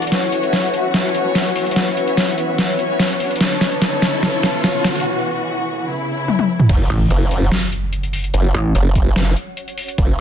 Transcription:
Already playing: E3 F#4 B4 E5
0.02 closed hi-hat
0.07 closed hi-hat
0.12 E3 A3 C#4 C#5, snare, closed hi-hat, riser
0.32 closed hi-hat
0.43 closed hi-hat
0.53 snare, closed hi-hat
0.73 closed hi-hat
0.94 C#4 C#5, snare, closed hi-hat
1.15 closed hi-hat
1.35 snare, closed hi-hat
1.56 open hi-hat
1.66 closed hi-hat
1.71 closed hi-hat
1.76 B3 C#4 C#5, snare, closed hi-hat
1.97 closed hi-hat
2.08 closed hi-hat
2.17 snare, closed hi-hat
2.38 closed hi-hat
2.58 C#4 C#5, snare, closed hi-hat
2.79 closed hi-hat
3.00 snare, closed hi-hat
3.20 open hi-hat
3.31 closed hi-hat
3.36 closed hi-hat
3.41 D3 B3 C#4 A4 C#5, snare, closed hi-hat
3.50 E4
3.61 snare, closed hi-hat
3.72 closed hi-hat
3.82 C#4 C#5, snare, closed hi-hat
4.02 snare, closed hi-hat
4.23 C#4 C#5, snare, closed hi-hat
4.43 snare, closed hi-hat
4.64 C#4 C#5, snare, closed hi-hat
4.84 snare, open hi-hat
4.95 closed hi-hat
5.00 closed hi-hat
5.05 E3 F#4
5.87 C#3 E4
6.28 high tom
6.39 high tom
6.60 mid tom
6.69 F#1, kick, closed hi-hat, crash, impact
6.90 A1, closed hi-hat
7.09 F#1 C#5, closed hi-hat
7.15 F#5
7.31 closed hi-hat
7.52 snare, closed hi-hat
7.72 closed hi-hat
7.93 closed hi-hat
8.03 closed hi-hat
8.13 open hi-hat
8.24 closed hi-hat
8.34 F#1, closed hi-hat
8.54 A1, closed hi-hat
8.75 F#1, closed hi-hat
8.95 kick, closed hi-hat
9.16 F#1, snare, closed hi-hat
9.37 closed hi-hat
9.57 closed hi-hat
9.68 closed hi-hat
9.78 open hi-hat
9.88 closed hi-hat
9.98 F#1, kick, closed hi-hat

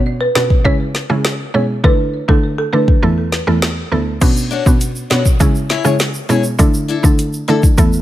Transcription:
Already playing: B2 B3 C#4 D4 F#4
0.21 B4
0.35 B2 B3 C#4 D4 F#4 B4, snare
0.50 kick
0.65 C#3 G#3 C#4 E4 G#4 C#5, kick
0.95 snare
1.10 C#3 G#3 C#4 E4 G#4, cross-stick
1.25 snare
1.54 B2 G#3 C#4 E4 G#4 C#5
1.84 D3 A3 D4 E4 A4 B4, kick
2.28 D3 A3 D4 E4 A4, kick
2.58 A4
2.73 D3 A3 D4 E4 A4 B4
2.88 kick
3.02 E2 A3 B3 E4 A4
3.32 snare
3.47 E2 A3 B3 E4 A4, cross-stick
3.62 snare
3.92 D2 A3 B3 E4 A4
4.21 B2 B3 C#4 D4 F#4, kick, closed hi-hat, crash, shaker
4.37 shaker
4.51 D4 F#4 C#5
4.66 B2 B3 C#4 D4 F#4, kick, shaker
4.81 closed hi-hat, shaker
4.96 shaker
5.10 B2 B3 C#4 D4 F#4 C#5, snare
5.25 kick, shaker
5.40 C#3 G#3 C#4 E4 G#4, kick, closed hi-hat, shaker
5.55 shaker
5.69 E4 G#4 C#5, snare
5.84 C#3 G#3 C#4 E4 G#4 C#5, cross-stick, shaker
5.99 snare, closed hi-hat, shaker
6.14 shaker
6.29 B2 G#3 C#4 E4 G#4 C#5, shaker
6.44 shaker
6.59 D3 A3 D4 E4 A4, kick, closed hi-hat, shaker
6.74 shaker
6.88 D4 E4 A4
7.03 D3 A3 D4 E4 A4, kick, shaker
7.19 closed hi-hat, shaker
7.33 shaker
7.48 D3 A3 D4 E4 A4
7.63 kick, shaker
7.78 E2 A3 B3 E4 A4, kick, closed hi-hat, shaker
7.93 shaker

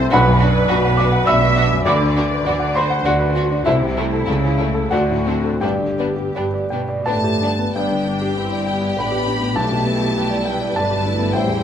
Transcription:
Already playing: C2 C3 E4 G4 A4 C5 E5 G5 A5 C6
0.00 C4
0.11 B1 B2 D4 F#4 B4 F#5 B5
0.28 F#2
0.40 D4 F#4
0.56 D5
0.69 B1 B2 D4 F#4
0.85 F#5
0.97 D4 F#4 D6
1.12 F#5
1.25 B1 B2 D4 F#4 D5 E5 B5 E6
1.41 F#4
1.56 D4 F#4
1.72 F#2
1.85 D2 D3 B3 D4 F#4 D5 B5 D6
2.02 D3
2.16 B3 D4 F#4
2.32 B4
2.45 D2 D3 B3 D4 F#4 D5
2.59 F#5
2.75 B3 D4 F#4 C5 B5 C6
2.90 F#5
3.05 D2 D3 B3 D4 F#4 D5 F#5
3.20 B4
3.36 B3 D4 F#4
3.51 D4
3.66 C2 C3 A3 E4 C5 E5
3.82 C3
3.97 A3 E4
4.13 A4
4.27 C#2 C#3 G3 A3 E4
4.44 C#3
4.58 G3 A3 E4
4.74 A4
4.91 D2 D3 A3 C4 D4 F#4 D5 F#5
5.10 A2
5.25 A3 C4 D4
5.44 A4
5.61 G1 G2 G3 B3 D4 G4 D5 G5
5.82 D3
5.98 G3 B3 D4
6.16 G4
6.35 G1 G2 G3 B3 D4 B4
6.54 D5
6.70 B2 G3 B3 D4 G5
6.89 D5
7.06 G1 A2 G3 A3 B3 D4 B4 D5 A5
7.24 G4
7.41 G2 G3 B3 D4
7.59 B3
7.75 G1 G2 G3 B3 D4 G4 B4 D5 G5
7.91 D3
8.06 B3 D4
8.22 G4
8.36 C4 E4 B4
8.52 D5
8.66 B3 G5
8.82 D5
8.97 A1 A2 A3 B3 D4 B4 D5 G5 B5
9.12 G4
9.26 D4
9.41 B3
9.56 B1 B2 G3 A3 D4 A5
9.72 B2
9.86 B3 E4
10.01 G4
10.16 G3 G4 B4
10.31 D5
10.45 G3 B4 G5
10.61 D5
10.75 G1 G2 A3 D4 B4 D5 A5
10.91 G4
11.05 D4 E4
11.19 B3
11.33 A1 A2 G3 C5 E5 G5
11.48 E2

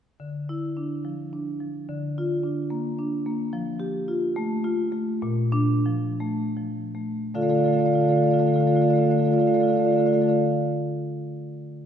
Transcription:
0.20 D3
0.49 E4
0.77 D4
1.05 F3
1.33 D4
1.60 F3
1.89 D3
2.18 F4
2.43 D4
2.70 A#3
2.99 D4
3.26 A#3
3.53 F3
3.80 G4
4.08 F4
4.36 A3
4.64 F4
4.92 A3
5.22 A#2
5.52 D4
5.86 F3
6.20 A3
6.57 F3
6.95 A3
7.34 D3 A3 F4 A4 D5 F5
7.41 D3 A3 F4 A4 D5 F5
7.48 A3 F4 A4 D5 F5
7.55 D3 F4 A4 D5 F5
7.60 A3 A4 D5 F5
7.66 D3 A3 F4 F5
7.71 D3 F4 A4 D5 F5
7.77 A3 F4 A4 D5 F5
7.84 D3 A3 F4 A4 D5 F5
7.92 D3 A3 F4 A4 D5 F5
7.98 A4 D5 F5
8.03 D3 A3 F4 F5
8.08 F4 A4 D5 F5
8.12 D3 A3 D5 F5
8.17 F4 A4
8.21 D3 A3 A4 D5 F5
8.26 F4 F5
8.30 D3 A3 F4 A4 D5 F5
8.39 D3 A3 F4 A4 D5 F5
8.46 A3 F4 A4 D5 F5
8.52 D3 F4 A4 D5 F5
8.58 D3 A3 A4 D5 F5
8.63 F4 F5
8.67 A3 F4 A4 D5
8.71 D3 A3 A4 D5 F5
8.76 F4 F5
8.81 D3 A3 F4 A4 D5 F5
8.88 D3 F4 A4 D5 F5
8.93 A3 A4 D5 F5
8.98 D3 F4 F5
9.02 A3 F4 A4 D5
9.08 D3 A3 F4 A4 D5 F5
9.15 D3 A4 D5 F5
9.19 A3 F4 F5
9.24 D3 F4 A4 D5
9.29 A3 A4 F5
9.33 F4 D5 F5
9.37 D3 A3 A4 D5
9.41 F4 F5
9.47 D3 A3 F4 A4 D5 F5
9.54 D3 A3 F4 A4 D5 F5
9.60 A3 F4 A4 D5 F5
9.67 D3 F4 A4 D5 F5
9.71 A3 F5
9.76 D3 A3 F4 A4 D5 F5
9.83 D3 F4 A4 D5 F5
9.88 A3 A4
9.92 F4 D5 F5
9.96 D3 A3 F4 A4 D5
10.01 F5
10.06 D3 A3 F4 A4 D5 F5
10.13 D3 A3 F4 A4 D5 F5
10.21 A3 F4 A4 D5 F5
10.27 D3 F4 A4 D5 F5

